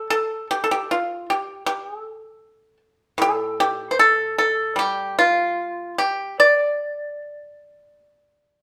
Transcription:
0.10 A4
0.51 G4
0.64 A4
0.71 G4
0.91 F4
1.30 G4
1.66 G4
1.86 G#4
1.99 A4
3.18 A2 A4
3.60 G4
3.91 C5
3.99 A4
4.38 A4
4.76 G3 G4
5.19 F4
5.98 G4
6.40 D5

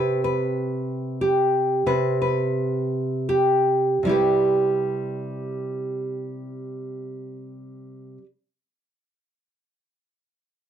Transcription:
Already playing: C3 G4 B4
0.24 B4
1.21 G4
1.86 C3 B4
2.22 B4
3.29 G4
4.03 C3 G3 E4
4.09 G4 B4

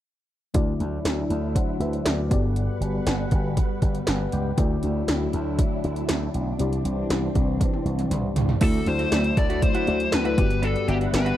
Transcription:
0.54 D2 D3 F#3 A3 D4 E4 F#4 D5, kick, closed hi-hat
0.80 D2, closed hi-hat
1.05 D2, snare, closed hi-hat
1.30 D2, closed hi-hat
1.56 C5 F#5, kick, closed hi-hat
1.80 D2 B4 E5, closed hi-hat
1.93 closed hi-hat
2.06 D2 A4 D5, snare, closed hi-hat
2.30 G1 G2 G3 B3 F#4 G4 B4 D5 F#5, kick, closed hi-hat
2.56 closed hi-hat
2.81 G1, closed hi-hat
3.06 G1, snare, closed hi-hat
3.31 G1, kick, closed hi-hat
3.57 kick, closed hi-hat
3.82 G1, kick, closed hi-hat
3.95 closed hi-hat
4.07 G1 B4 F#5, snare, closed hi-hat
4.32 C#2 D5 G5, closed hi-hat
4.57 D2 D3 F#3 A3 D4 E4 F#4 D5, kick, closed hi-hat
4.83 D2, closed hi-hat
5.08 D2, snare, closed hi-hat
5.33 D2, closed hi-hat
5.59 kick, closed hi-hat
5.84 D2, closed hi-hat
5.96 closed hi-hat
6.09 D2, snare, closed hi-hat
6.34 B1, closed hi-hat
6.59 C2 C3 E3 C4 E4 G4 D5, closed hi-hat
6.73 closed hi-hat
6.85 C2, closed hi-hat
7.10 C2, snare, closed hi-hat
7.35 C2, kick, closed hi-hat
7.61 kick, closed hi-hat, high tom
7.74 high tom
7.85 C2, closed hi-hat
7.99 closed hi-hat, mid tom
8.11 C2, closed hi-hat, mid tom
8.36 C#2, closed hi-hat, floor tom
8.49 floor tom
8.61 D2 D3 F#3 A3 D4 E4 F#4 A4 D5, kick, closed hi-hat, crash
8.74 closed hi-hat
8.86 D2 A3 E4 F#4 C5 D5, muted clean electric guitar stroke, closed hi-hat
8.99 A3 E4 F#4, closed hi-hat
9.12 D2 A3 E4 F#4 D5, snare, closed hi-hat
9.24 muted clean electric guitar stroke, closed hi-hat
9.37 D2 D5, muted clean electric guitar stroke, kick, closed hi-hat
9.50 A3 E4 F#4, closed hi-hat
9.62 A3 E4 F#4 C5 D5, muted clean electric guitar stroke, kick, closed hi-hat
9.75 A3 E4 F#4, closed hi-hat
9.87 D2 A3 E4 F#4 D5, closed hi-hat
10.00 muted clean electric guitar stroke, closed hi-hat
10.12 D2 B4, muted clean electric guitar stroke, snare, closed hi-hat
10.25 A3 E4 F#4 B4, closed hi-hat
10.38 G1 G2 G3 B3 F#4 G4 B4 D5 F#5, muted clean electric guitar stroke, kick, closed hi-hat
10.50 muted clean electric guitar stroke, closed hi-hat
10.62 B3 D4 F#4 A4, closed hi-hat
10.75 muted clean electric guitar stroke, closed hi-hat
10.88 G1 B3 D4 F#4 G4 E5, closed hi-hat
11.01 B3 D4 F#4, closed hi-hat
11.13 G1 B3 F#4 G4 B4 D5, snare, closed hi-hat
11.26 B3 D4 F#4, closed hi-hat

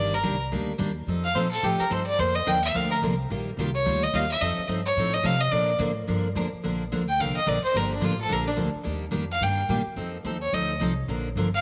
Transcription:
Already playing: G1 D#3 G3 A#3 D4 G4 D5
0.14 A#4
0.23 C2 D#3 G3 A#3 D4 G4
0.52 D2 D#3 G3 A#3 D4 G4
0.78 D#2 D#3 G3 A#3 D4 G4
1.07 F2 F3 C4 D#4 A4
1.24 F5
1.35 A#2 F3 C4 D#4 A4 C5
1.51 A4
1.63 A2 F3 C4 D#4 G4 A4
1.80 A#4, muted upright bass stroke
1.90 G2 F3 C4 D#4 A4 C5
2.06 D5
2.18 F2 D3 F3 A#3 D4 A#4 C5
2.35 D#5
2.46 D#2 D3 F3 A#3 D4 A#4 G5
2.64 E5
2.74 D2 D3 F3 A#3 D4 A#4 F5
2.91 A#4
3.02 C2 D3 F3 A#3 D4 A#4
3.30 A#1 D#3 G3 A#3 F4 G4
3.57 C2 D#3 G3 A#3 F4 G4
3.74 C#5
3.86 D2 D#3 G3 A#3 F4 G4
4.03 D#5
4.13 D#2 D#3 G3 A#3 F4 G4 F5
4.31 E5
4.41 F2 F3 C4 D#4 A4 D#5
4.58 muted upright bass stroke
4.68 G2 F3 C4 D#4 A4
4.86 C#5
4.97 A2 F3 C4 D#4 A4
5.14 D#5
5.23 C3 F3 C4 D#4 A4 F5
5.40 D#5
5.51 A#2 D3 F3 A#3 D4 A#4 D5
5.79 A2 D3 F3 A#3 D4 A#4
6.07 G2 D3 F3 A#3 D4 A#4
6.35 F2 D3 F3 A#3 D4 A#4
6.53 muted upright bass stroke
6.63 A#1 D3 F3 A#3 D4 A#4
6.92 D2 D3 F3 A#3 D4 A#4
7.08 G5
7.20 C2 D3 F3 A#3 D4 A#4 F5
7.36 D#5, muted upright bass stroke
7.46 A#1 D3 F3 A#3 D4 A#4 D5
7.64 C5, muted upright bass stroke
7.73 G1 D3 F3 A#3 D4 G4 A#4
7.94 D4
8.01 A1 D3 F3 A#3 D4 F4 G4
8.21 A4
8.29 A#1 D3 F3 A#3 D4 G4 A#4
8.47 D4
8.56 D2 D3 F3 A#3 D4 G4
8.74 muted upright bass stroke
8.83 D#2 D#3 G3 A#3 D4 G4
9.11 F2 D#3 G3 A#3 D4 G4
9.31 F5
9.41 G2 D#3 G3 A#3 D4 G4 G5
9.69 A#2 D#3 G3 A#3 D4 G4
9.86 muted upright bass stroke
9.96 F2 F3 C4 D#4 A4
10.24 D#2 F3 C4 D#4 A4
10.42 C#5
10.53 D2 F3 C4 D#4 A4 D#5
10.80 C2 F3 C4 D#4 A4
11.08 A#1 D3 F3 A#3 D4 A#4
11.36 G1 D3 F3 A#3 D4 A#4
11.54 F5

